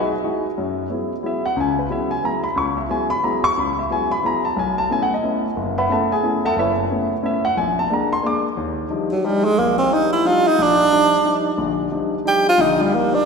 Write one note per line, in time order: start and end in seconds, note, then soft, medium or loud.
0.00 0.12 G#3 medium
0.00 0.12 D#4 soft
0.00 0.12 E4 soft
0.00 0.12 F#4 medium
0.24 0.45 G#3 medium
0.24 0.45 D#4 medium
0.24 0.45 E4 soft
0.24 0.45 F#4 medium
0.58 0.86 F#2 medium
0.58 0.85 F#3 medium
0.90 1.11 F#3 soft
0.90 1.12 G#3 soft
0.90 1.12 B3 soft
0.90 1.12 E4 medium
1.22 1.44 F#3 soft
1.22 1.44 G#3 soft
1.22 1.45 B3 soft
1.22 1.45 E4 soft
1.22 1.44 E5 medium
1.46 1.57 F#5 medium
1.56 1.85 C#2 medium
1.56 1.85 C#3 medium
1.56 1.78 G#5 medium
1.79 1.90 B4 medium
1.90 2.11 F#3 medium
1.90 2.11 G#3 soft
1.90 2.12 B3 soft
1.90 2.12 E4 medium
1.90 2.11 E5 medium
2.11 2.23 G#5 medium
2.23 2.44 F#3 soft
2.23 2.44 G#3 soft
2.23 2.45 B3 soft
2.23 2.45 E4 medium
2.23 2.44 A#5 medium
2.44 2.56 B5 medium
2.56 2.84 C#2 medium
2.56 2.77 C#6 medium
2.78 2.89 E5 medium
2.89 3.11 F#3 soft
2.89 3.11 G#3 soft
2.89 3.11 B3 soft
2.89 3.11 E4 medium
2.89 3.10 G#5 medium
3.10 3.22 B5 loud
3.23 3.45 F#3 medium
3.23 3.45 G#3 medium
3.23 3.45 B3 soft
3.23 3.45 E4 medium
3.23 3.43 A#5 medium
3.44 3.56 C#6 loud
3.57 3.85 C#2 medium
3.57 3.77 B5 medium
3.79 3.90 E5 medium
3.90 4.12 F#3 medium
3.90 4.12 G#3 soft
3.90 4.12 B3 soft
3.90 4.12 E4 medium
3.90 4.11 G#5 medium
4.12 4.23 B5 medium
4.23 4.45 F#3 soft
4.23 4.45 G#3 soft
4.23 4.45 B3 soft
4.23 4.45 E4 medium
4.23 4.44 A#5 medium
4.45 4.56 A5 medium
4.56 4.85 B1 medium
4.56 4.78 G#5 medium
4.78 4.90 A5 medium
4.90 5.11 A3 medium
4.90 5.11 B3 soft
4.90 5.12 C#4 soft
4.90 5.12 E4 medium
4.90 5.02 G#5 medium
5.03 5.12 F#5 medium
5.14 5.44 D#5 medium
5.23 5.45 A3 medium
5.23 5.45 B3 soft
5.23 5.45 C#4 soft
5.23 5.45 E4 medium
5.56 5.85 F#1 medium
5.78 5.90 B4 medium
5.78 5.90 E5 medium
5.78 5.90 F#5 medium
5.78 5.90 B5 medium
5.89 6.11 A3 medium
5.89 6.11 B3 soft
5.89 6.11 C#4 soft
5.89 6.12 E4 medium
5.89 6.11 A4 medium
5.89 6.11 E5 medium
5.89 6.11 F#5 medium
5.89 6.11 A5 medium
6.12 6.42 G#4 medium
6.12 6.42 G#5 medium
6.23 6.45 A3 soft
6.23 6.45 B3 soft
6.23 6.45 C#4 soft
6.23 6.45 E4 medium
6.45 6.57 A4 medium
6.45 6.57 E5 medium
6.45 6.57 F#5 medium
6.45 6.57 A5 loud
6.56 6.85 F#1 medium
6.56 6.71 E4 medium
6.56 6.71 B4 medium
6.56 6.71 C#5 medium
6.56 6.71 E5 medium
6.90 7.12 A3 medium
6.90 7.12 B3 medium
6.90 7.12 C#4 soft
6.90 7.12 E4 medium
7.23 7.45 A3 medium
7.23 7.45 B3 soft
7.23 7.45 C#4 medium
7.23 7.45 E4 medium
7.23 7.44 E5 medium
7.45 7.56 F#5 medium
7.57 7.86 A#1 medium
7.57 7.77 G#5 medium
7.79 7.90 A5 medium
7.90 8.12 G#3 medium
7.90 8.12 A#3 medium
7.90 8.12 D4 medium
7.90 8.12 A#5 medium
8.13 8.24 C6 medium
8.22 8.45 G#3 medium
8.22 8.45 A#3 medium
8.22 8.45 D4 medium
8.26 8.38 D6 medium
8.57 8.86 D#2 medium
8.90 9.12 F3 medium
8.90 9.12 G3 soft
8.90 9.12 D4 soft
8.90 9.12 D#4 medium
9.12 9.27 F#3 medium
9.24 9.46 F3 medium
9.24 9.46 G3 soft
9.24 9.46 G3 medium
9.24 9.46 D4 soft
9.24 9.46 D#4 medium
9.44 9.60 G#3 medium
9.59 9.87 A#1 medium
9.59 9.78 A#3 medium
9.78 9.95 C4 medium
9.91 10.13 F3 medium
9.91 10.13 G3 medium
9.91 10.13 D4 soft
9.91 10.13 D#4 medium
9.91 10.12 D#4 medium
10.12 10.28 E4 medium
10.25 10.46 F3 medium
10.25 10.47 G3 medium
10.25 10.47 D4 medium
10.25 10.47 D#4 medium
10.25 10.49 F4 medium
10.47 10.64 D#4 loud
10.59 10.87 A#1 medium
10.59 11.60 D4 medium
10.92 11.14 F3 medium
10.92 11.14 G3 soft
10.92 11.14 D4 soft
10.92 11.14 D#4 medium
11.25 11.47 F3 medium
11.25 11.47 G3 soft
11.25 11.47 D4 soft
11.25 11.47 D#4 medium
11.58 11.87 A#1 medium
11.58 11.87 D3 medium
11.92 12.14 F3 medium
11.92 12.14 G3 soft
11.92 12.14 D4 soft
11.92 12.14 D#4 medium
12.25 12.47 F3 soft
12.25 12.47 G3 soft
12.25 12.47 D4 soft
12.25 12.47 D#4 medium
12.25 12.46 G4 medium
12.49 12.63 F4 loud
12.58 12.87 A#1 medium
12.58 12.87 D3 medium
12.58 12.83 D#4 medium
12.82 12.96 G3 medium
12.92 13.14 F3 medium
12.92 13.14 G3 soft
12.92 13.16 A#3 medium
12.92 13.14 D4 soft
12.92 13.14 D#4 medium
13.14 13.25 D4 medium